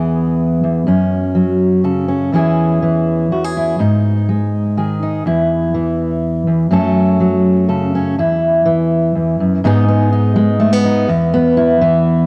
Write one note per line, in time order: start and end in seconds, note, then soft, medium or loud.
0.00 0.63 E2 medium
0.00 0.88 E3 soft
0.00 0.86 B3 soft
0.00 0.87 E4 soft
0.00 0.87 G#4 soft
0.64 0.87 E2 soft
0.87 2.31 F#2 medium
0.87 2.07 C#4 soft
1.35 2.30 F#3 soft
1.84 2.31 C#3 soft
1.84 2.31 A4 soft
2.08 2.33 C#4 soft
2.32 3.31 E2 medium
2.32 2.81 E3 soft
2.32 3.77 C#4 soft
2.32 3.56 E4 soft
2.32 3.32 G#4 soft
2.82 3.80 E3 soft
3.32 3.79 E2 soft
3.32 3.44 F#4 soft
3.44 3.80 G#4 soft
3.57 3.78 E4 soft
3.79 5.23 G#2 medium
3.79 5.01 D#4 soft
4.29 5.23 G#3 soft
4.77 5.23 D#3 soft
4.77 5.23 G#4 soft
5.02 5.23 D#4 soft
5.26 6.46 E2 medium
5.26 6.69 E4 soft
5.74 6.71 E3 soft
6.47 6.70 E2 soft
6.71 8.14 F#2 medium
6.71 7.19 F#3 soft
6.71 8.18 A3 soft
6.71 7.94 C#4 soft
6.71 7.68 A4 medium
7.20 8.15 F#3 soft
7.68 8.15 C#3 soft
7.68 8.15 A4 soft
7.95 8.18 C#4 soft
8.18 9.14 E2 medium
8.18 9.61 E4 medium
8.65 9.63 E3 medium
9.15 9.39 E2 medium
9.40 9.64 F#2 soft
9.64 11.06 G#2 medium
9.64 10.35 G#3 medium
9.64 9.88 B3 medium
9.64 10.11 D#4 medium
9.64 11.07 G#4 medium
9.88 10.59 B3 medium
10.12 10.84 D#4 medium
10.36 11.05 G#3 medium
10.60 10.73 A3 medium
10.73 11.09 B3 medium
10.85 11.06 D#4 medium
11.09 12.26 E2 medium
11.34 12.26 B3 medium
11.57 12.26 E4 medium
11.81 12.26 E3 medium